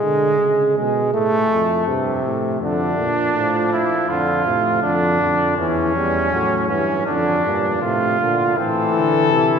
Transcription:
0.00 0.39 D3 medium
0.00 0.75 G#3 medium
0.40 0.76 C#3 medium
0.78 1.13 B2 medium
0.78 1.13 G#3 medium
1.14 1.50 A2 medium
1.14 1.86 A3 medium
1.50 1.88 F2 medium
1.87 2.23 G2 medium
1.87 2.60 C3 medium
2.23 2.59 A2 medium
2.60 2.97 F2 medium
2.60 3.08 D3 medium
2.60 3.68 D4 medium
2.97 3.36 A#2 medium
3.35 3.83 A2 medium
3.35 4.06 F3 medium
3.72 4.10 E4 medium
4.09 4.44 F2 medium
4.09 4.46 D3 medium
4.09 4.81 F4 medium
4.46 4.83 A2 medium
4.46 4.85 C3 medium
4.82 5.20 F2 medium
4.82 5.57 D3 medium
4.82 5.56 D4 medium
5.21 5.57 F2 medium
5.57 5.95 E2 medium
5.57 5.95 E3 medium
5.57 6.67 C#4 medium
5.95 6.31 E2 medium
5.95 6.31 G3 medium
6.32 6.72 A2 medium
6.32 6.72 F#3 medium
6.69 7.07 G2 medium
6.69 7.06 E3 medium
6.69 7.06 C#4 medium
7.07 7.44 F2 medium
7.07 7.44 D3 medium
7.07 7.80 D4 medium
7.45 7.81 G2 medium
7.45 7.84 A#2 medium
7.82 8.19 A2 medium
7.82 8.19 C3 medium
7.82 8.59 F4 medium
8.20 8.56 A#2 medium
8.20 8.56 D3 medium
8.55 8.93 A2 medium
8.55 9.59 E3 medium
8.55 9.06 C4 medium
8.55 9.59 A4 medium
8.94 9.33 D3 medium
9.31 9.59 C3 medium
9.31 9.59 E4 medium

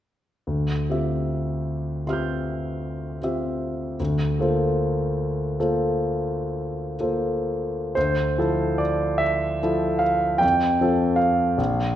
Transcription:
0.47 0.88 D2 soft
0.90 2.04 C4 soft
0.90 2.04 F4 soft
0.90 2.04 G4 soft
0.90 2.05 E5 soft
2.07 3.18 C4 soft
2.07 3.18 F4 soft
2.07 3.19 G4 soft
2.07 3.19 E5 soft
2.07 3.95 C6 soft
2.07 3.97 F6 soft
2.13 3.98 G6 soft
3.23 3.96 C4 soft
3.23 3.96 F4 soft
3.23 3.96 G4 soft
3.23 3.96 E5 soft
4.00 4.37 D2 soft
4.39 5.57 A#3 soft
4.39 5.57 F4 soft
4.39 5.57 A4 soft
4.39 5.58 C5 soft
5.59 6.94 A#3 soft
5.59 6.94 F4 soft
5.59 6.94 A4 soft
5.59 6.95 C5 soft
7.00 7.92 A#3 soft
7.00 7.93 F4 soft
7.00 7.93 A4 soft
7.00 7.93 C5 soft
7.95 8.37 D2 soft
7.95 8.80 C5 soft
8.38 9.59 F3 soft
8.38 9.59 E4 soft
8.38 9.59 A4 soft
8.78 9.21 D5 soft
9.18 10.01 E5 medium
9.63 10.39 F3 soft
9.63 10.39 E4 soft
9.63 10.39 A4 soft
9.99 10.40 F5 soft
10.38 10.79 F2 soft
10.38 11.17 G5 soft
10.81 11.54 F3 soft
10.81 11.55 C4 soft
10.81 11.55 F4 soft
10.81 11.55 A4 soft
11.16 11.96 F5 soft
11.58 11.96 A#1 soft

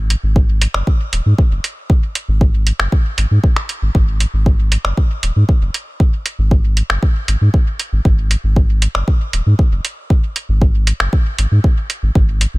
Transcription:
0.00 0.15 G#1 loud
0.10 closed hi-hat medium
0.23 0.67 G#1 loud
0.36 kick loud
0.61 closed hi-hat medium
0.74 0.82 F#1 medium
0.74 finger snap medium
0.87 kick loud
1.13 1.21 D#1 medium
1.13 closed hi-hat medium
1.26 1.34 G#2 medium
1.38 kick loud
1.51 1.59 F#1 medium
1.64 closed hi-hat medium
1.90 kick loud
2.15 closed hi-hat medium
2.28 2.72 G#1 loud
2.41 kick loud
2.67 closed hi-hat medium
2.80 2.87 F#1 medium
2.80 finger snap medium
2.92 kick loud
3.18 3.26 G#1 medium
3.18 closed hi-hat medium
3.31 3.39 G#2 medium
3.44 kick loud
3.56 finger snap medium
3.69 closed hi-hat medium
3.82 3.90 G#1 medium
3.95 4.26 G#1 loud
3.95 kick loud
4.20 closed hi-hat medium
4.33 4.77 G#1 loud
4.46 kick loud
4.72 closed hi-hat medium
4.85 4.93 F#1 medium
4.85 finger snap medium
4.97 kick loud
5.23 5.31 D#1 medium
5.23 closed hi-hat medium
5.36 5.44 G#2 medium
5.49 kick loud
5.62 5.70 F#1 medium
5.74 closed hi-hat medium
6.00 kick loud
6.26 closed hi-hat medium
6.39 6.82 G#1 loud
6.51 kick loud
6.77 closed hi-hat medium
6.90 6.98 F#1 medium
6.90 finger snap medium
7.03 kick loud
7.28 7.36 G#1 medium
7.28 closed hi-hat medium
7.41 7.49 G#2 medium
7.54 kick medium
7.79 closed hi-hat medium
7.92 8.00 G#1 medium
8.05 8.36 G#1 loud
8.05 kick loud
8.31 closed hi-hat medium
8.44 8.87 G#1 loud
8.56 kick medium
8.82 closed hi-hat medium
8.95 9.03 F#1 medium
8.95 finger snap medium
9.08 kick loud
9.33 9.41 D#1 medium
9.33 closed hi-hat medium
9.46 9.54 G#2 medium
9.59 kick loud
9.72 9.80 F#1 medium
9.85 closed hi-hat medium
10.10 kick loud
10.36 closed hi-hat medium
10.49 10.92 G#1 loud
10.62 kick loud
10.87 closed hi-hat medium
11.00 11.08 F#1 medium
11.00 finger snap medium
11.13 kick loud
11.38 11.46 G#1 medium
11.38 closed hi-hat medium
11.51 11.59 G#2 medium
11.64 kick loud
11.90 closed hi-hat medium
12.03 12.11 G#1 medium
12.15 12.46 G#1 loud
12.15 kick loud
12.41 closed hi-hat medium
12.54 12.58 G#1 loud

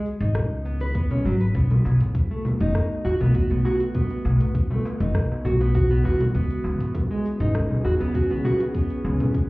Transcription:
0.06 shaker medium
0.20 0.32 G#1 loud
0.20 0.64 D#4 medium
0.20 closed hi-hat soft
0.20 shaker soft
0.35 1.05 C#2 loud
0.35 kick loud
0.35 cross-stick medium
0.35 closed hi-hat medium
0.35 low conga medium
0.35 shaker soft
0.51 shaker soft
0.65 0.80 B3 medium
0.65 shaker medium
0.81 0.94 B4 loud
0.81 closed hi-hat soft
0.81 shaker soft
0.95 1.10 B3 medium
0.95 kick loud
0.95 closed hi-hat medium
0.95 shaker soft
1.11 1.24 C#4 medium
1.11 closed hi-hat soft
1.11 low conga medium
1.11 shaker soft
1.25 1.49 G#1 medium
1.25 1.34 F#3 medium
1.25 shaker medium
1.41 1.54 B4 medium
1.41 closed hi-hat soft
1.41 shaker soft
1.55 1.79 B1 loud
1.55 9.49 E3 medium
1.55 2.14 B3 medium
1.55 kick loud
1.55 closed hi-hat medium
1.55 shaker soft
1.70 6.35 A3 medium
1.70 closed hi-hat soft
1.70 low conga medium
1.70 shaker soft
1.85 1.97 B1 loud
1.85 darbuka ka soft
1.85 darbuka tek medium
1.85 shaker medium
2.00 7.16 F#4 medium
2.00 closed hi-hat soft
2.00 darbuka dum medium
2.00 shaker soft
2.12 9.49 B3 medium
2.12 kick loud
2.12 closed hi-hat medium
2.12 shaker soft
2.31 2.44 A3 medium
2.31 shaker soft
2.45 low conga medium
2.45 shaker medium
2.60 2.72 F#1 loud
2.60 3.04 D#4 medium
2.60 closed hi-hat soft
2.60 shaker soft
2.75 kick loud
2.75 cross-stick medium
2.75 closed hi-hat medium
2.75 shaker soft
2.91 shaker soft
3.05 3.17 E2 medium
3.05 3.14 F#4 loud
3.05 darbuka tek medium
3.05 darbuka dum medium
3.05 shaker medium
3.14 9.49 B4 medium
3.20 3.32 B1 medium
3.20 3.34 B3 medium
3.20 closed hi-hat soft
3.20 darbuka ka medium
3.20 low conga medium
3.20 shaker soft
3.35 3.50 F#4 medium
3.35 kick loud
3.35 closed hi-hat medium
3.35 shaker soft
3.50 3.62 B1 loud
3.50 3.64 B3 medium
3.50 closed hi-hat soft
3.50 darbuka tek soft
3.50 shaker soft
3.65 3.80 F#4 loud
3.65 darbuka ka medium
3.65 darbuka tek medium
3.65 shaker medium
3.80 closed hi-hat soft
3.80 shaker soft
3.95 4.54 B3 medium
3.95 kick loud
3.95 closed hi-hat medium
3.95 low conga medium
3.95 shaker soft
4.10 closed hi-hat soft
4.10 shaker soft
4.25 4.37 B1 loud
4.25 darbuka ka medium
4.25 darbuka tek medium
4.25 shaker medium
4.41 closed hi-hat soft
4.41 darbuka dum medium
4.41 shaker soft
4.55 kick loud
4.55 closed hi-hat medium
4.55 shaker soft
4.70 4.84 A3 medium
4.70 low conga medium
4.70 shaker soft
4.85 darbuka tek medium
4.85 shaker medium
5.00 5.12 F#1 loud
5.00 5.44 D#4 medium
5.00 closed hi-hat soft
5.00 darbuka ka soft
5.00 shaker soft
5.15 5.27 B1 medium
5.15 kick loud
5.15 cross-stick medium
5.15 closed hi-hat medium
5.15 shaker soft
5.31 darbuka ka medium
5.31 shaker soft
5.45 6.00 B1 loud
5.45 5.54 F#4 loud
5.45 low conga medium
5.45 shaker medium
5.61 5.73 B3 medium
5.61 closed hi-hat soft
5.61 darbuka tek medium
5.61 shaker soft
5.75 5.90 F#4 medium
5.75 kick loud
5.75 closed hi-hat medium
5.75 shaker soft
5.90 6.04 B3 medium
5.90 closed hi-hat soft
5.90 darbuka dum medium
5.90 shaker soft
6.04 6.29 E2 medium
6.04 6.20 F#4 loud
6.04 darbuka ka medium
6.04 darbuka tek medium
6.04 shaker medium
6.21 closed hi-hat soft
6.21 low conga medium
6.21 shaker soft
6.35 6.59 C#2 medium
6.35 6.94 B3 medium
6.35 kick loud
6.35 closed hi-hat medium
6.35 shaker soft
6.51 closed hi-hat soft
6.51 shaker soft
6.64 6.77 C#2 loud
6.64 darbuka ka soft
6.64 darbuka tek medium
6.64 shaker medium
6.80 closed hi-hat soft
6.80 darbuka dum medium
6.80 shaker soft
6.95 9.49 C#4 medium
6.95 kick loud
6.95 closed hi-hat medium
6.95 low conga medium
6.95 shaker soft
7.11 7.24 G#3 medium
7.11 9.49 G#4 medium
7.11 shaker soft
7.25 shaker medium
7.40 7.52 G#1 loud
7.40 7.84 D#4 medium
7.40 closed hi-hat soft
7.40 shaker soft
7.54 kick loud
7.54 cross-stick medium
7.54 closed hi-hat medium
7.54 shaker soft
7.71 low conga medium
7.71 shaker soft
7.85 7.97 E2 medium
7.85 7.94 F#4 loud
7.85 darbuka tek medium
7.85 darbuka dum medium
7.85 shaker medium
8.00 8.12 C#2 medium
8.00 8.13 B3 medium
8.00 closed hi-hat soft
8.00 darbuka ka medium
8.00 shaker soft
8.14 8.30 F#4 medium
8.14 kick loud
8.14 closed hi-hat medium
8.14 shaker soft
8.30 8.42 C#2 loud
8.30 8.44 B3 medium
8.30 closed hi-hat soft
8.30 darbuka tek soft
8.30 shaker soft
8.45 8.60 F#4 loud
8.45 darbuka ka medium
8.45 darbuka tek medium
8.45 low conga medium
8.45 shaker medium
8.60 closed hi-hat soft
8.60 shaker soft
8.74 9.33 B3 medium
8.74 kick loud
8.74 closed hi-hat medium
8.74 shaker soft
8.90 closed hi-hat soft
8.90 shaker soft
9.05 9.17 C#2 loud
9.05 darbuka ka medium
9.05 darbuka tek medium
9.05 shaker medium
9.20 closed hi-hat soft
9.20 low conga medium
9.20 darbuka dum medium
9.20 shaker soft
9.34 kick loud
9.34 closed hi-hat medium
9.34 shaker soft

